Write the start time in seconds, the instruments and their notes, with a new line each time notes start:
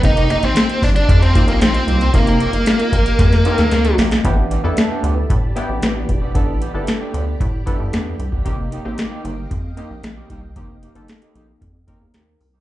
0.03 analog synth bass F1, analog polysynth A#3 C4 D#4 G4, lead electric guitar D#4, string machine G4 D#5 F5 A#5, muted clean electric guitar stroke, kick, closed hi-hat
0.16 clean electric guitar A#3 D#4 G4, closed hi-hat
0.29 clean electric guitar A#3 D#4 G4, lead electric guitar D#4, closed hi-hat
0.43 analog synth bass A1, lead electric guitar C4, muted clean electric guitar stroke, closed hi-hat
0.55 muted clean electric guitar stroke, snare, closed hi-hat
0.68 muted clean electric guitar stroke, closed hi-hat
0.82 analog synth bass G1, lead electric guitar D4, kick, open hi-hat
0.95 lead electric guitar D4, muted clean electric guitar stroke, closed hi-hat
1.08 analog synth bass F2, muted clean electric guitar stroke, kick, closed hi-hat
1.21 lead electric guitar C4, muted clean electric guitar stroke, closed hi-hat
1.34 clean electric guitar A#3 D#4 G4, analog polysynth A#3 C4 D#4 F4, kick, closed hi-hat
1.47 analog synth bass A#1, lead electric guitar A#3, clean electric guitar A#3 D#4 A4, closed hi-hat
1.61 analog synth bass A#1, lead electric guitar C4, muted clean electric guitar stroke, snare, closed hi-hat
1.74 muted clean electric guitar stroke, closed hi-hat
1.87 analog synth bass C2, clean electric guitar A#3 D#4 G4, closed hi-hat
2.00 muted clean electric guitar stroke, closed hi-hat
2.13 analog synth bass F1, analog polysynth A3 C4 D#4 F4, lead electric guitar A#3, muted clean electric guitar stroke, kick, closed hi-hat
2.20 analog polysynth A#3
2.27 clean electric guitar A#3 D#4 G4, closed hi-hat
2.40 clean electric guitar A#3 D#4 G4, closed hi-hat
2.53 analog synth bass G1, muted clean electric guitar stroke, closed hi-hat
2.66 muted clean electric guitar stroke, snare, closed hi-hat
2.79 muted clean electric guitar stroke, closed hi-hat
2.92 analog synth bass A#1, kick, closed hi-hat
3.06 muted clean electric guitar stroke, closed hi-hat
3.19 analog synth bass F2, muted clean electric guitar stroke, kick, snare, closed hi-hat
3.32 muted clean electric guitar stroke, snare, closed hi-hat
3.45 analog polysynth A#3 C4 D#4 A4, clean electric guitar A#3 D#4 G4, closed hi-hat
3.52 analog polysynth A#4
3.58 analog synth bass D#2, clean electric guitar A#3 D#4 A4, snare, closed hi-hat
3.71 analog synth bass D2, muted clean electric guitar stroke, snare, closed hi-hat
3.85 muted clean electric guitar stroke, closed hi-hat
3.98 analog synth bass A#1, clean electric guitar A#3 D#4 G4, snare, open hi-hat
4.11 muted clean electric guitar stroke, snare, closed hi-hat
4.24 analog synth bass A1, clean electric guitar B3 D4 G4, analog polysynth B3 D4 E4 G4, string machine G4 D5 A5 B5, kick, closed hi-hat
4.37 muted clean electric guitar stroke
4.50 clean electric guitar B3 D4 G4, closed hi-hat
4.64 analog synth bass E2, analog polysynth B3 D4 E4 A4, clean electric guitar B3 D4 G4
4.77 muted clean electric guitar stroke, snare, closed hi-hat
4.90 clean electric guitar B3 D4 G4
5.03 analog synth bass D2, clean electric guitar B3 D4 G4, closed hi-hat
5.17 muted clean electric guitar stroke
5.30 analog synth bass A2, muted clean electric guitar stroke, kick, closed hi-hat
5.43 muted clean electric guitar stroke
5.56 analog polysynth B3 D4 E4 G4, clean electric guitar B3 D4 G4, closed hi-hat
5.69 analog synth bass A1, muted clean electric guitar stroke
5.82 analog synth bass A1, clean electric guitar B3 D4 G4, snare, closed hi-hat
5.95 muted clean electric guitar stroke
6.09 analog synth bass E1, muted clean electric guitar stroke, kick, closed hi-hat
6.22 clean electric guitar B3 D4 G4
6.35 analog synth bass A1, analog polysynth B3 D4 E4 A4, clean electric guitar B3 D4 G4, string machine G5, kick, closed hi-hat
6.48 muted clean electric guitar stroke
6.61 clean electric guitar B3 D4 G4, closed hi-hat
6.74 analog synth bass G1, analog polysynth B3 D4 E4 A4, clean electric guitar B3 D4 G4
6.87 muted clean electric guitar stroke, snare, closed hi-hat
7.01 clean electric guitar B3 D4 G4
7.13 analog synth bass D2, clean electric guitar B3 D4 G4, closed hi-hat
7.27 muted clean electric guitar stroke
7.40 analog synth bass A2, muted clean electric guitar stroke, kick, closed hi-hat
7.53 muted clean electric guitar stroke
7.66 clean electric guitar B3 D4 G4, analog polysynth B3 D4 E4 A4, kick, closed hi-hat
7.79 analog synth bass G2, muted clean electric guitar stroke
7.92 analog synth bass E2, clean electric guitar B3 D4 G4, snare, closed hi-hat
8.06 muted clean electric guitar stroke
8.19 analog synth bass C2, muted clean electric guitar stroke, closed hi-hat
8.32 clean electric guitar B3 D4 G4, kick
8.45 analog synth bass F1, clean electric guitar A#3 D#4 G4, analog polysynth A#3 C4 D#4 G4, string machine D#5 F5 G5, kick, closed hi-hat
8.58 muted clean electric guitar stroke
8.71 clean electric guitar A#3 D#4 G4, closed hi-hat
8.85 analog synth bass A1, analog polysynth A#3 C4 D#4 G4, clean electric guitar A#3 D#4 G4
8.98 muted clean electric guitar stroke, snare, closed hi-hat
9.11 clean electric guitar A#3 D#4 G4
9.24 analog synth bass G1, clean electric guitar A#3 D#4 G4, closed hi-hat
9.37 muted clean electric guitar stroke
9.50 analog synth bass F2, muted clean electric guitar stroke, kick, closed hi-hat
9.63 muted clean electric guitar stroke
9.77 clean electric guitar A#3 D#4 G4, analog polysynth A#3 C4 D#4 G4, closed hi-hat
9.90 analog synth bass A#1, muted clean electric guitar stroke
10.03 analog synth bass A#1, muted clean electric guitar stroke, snare, closed hi-hat
10.17 clean electric guitar A#3 D#4 G4
10.30 analog synth bass C2, clean electric guitar A#3 D#4 G4, kick, closed hi-hat
10.43 muted clean electric guitar stroke
10.56 analog synth bass F1, clean electric guitar A#3 D#4 G4, analog polysynth A#3 C4 D#4 G4, kick, closed hi-hat
10.69 muted clean electric guitar stroke
10.82 clean electric guitar A#3 D#4 G4, closed hi-hat
10.95 analog synth bass G1, analog polysynth A#3 C4 D#4 A4, clean electric guitar A#3 D#4 G4, closed hi-hat
11.08 snare, closed hi-hat
11.22 clean electric guitar A#3 D#4 G4, closed hi-hat
11.35 analog synth bass A#1, clean electric guitar A#3 D#4 G4, closed hi-hat
11.49 muted clean electric guitar stroke
11.61 analog synth bass F2, muted clean electric guitar stroke, kick, closed hi-hat
11.75 muted clean electric guitar stroke
11.87 analog polysynth A#3 C4 D#4 A#4, clean electric guitar A#3 D#4 G4, kick, closed hi-hat
12.01 analog synth bass E2, muted clean electric guitar stroke
12.14 analog synth bass D#2, clean electric guitar A#3 D#4 G4, snare, closed hi-hat
12.27 muted clean electric guitar stroke
12.40 analog synth bass C2, muted clean electric guitar stroke, open hi-hat
12.54 clean electric guitar A#3 D#4 G4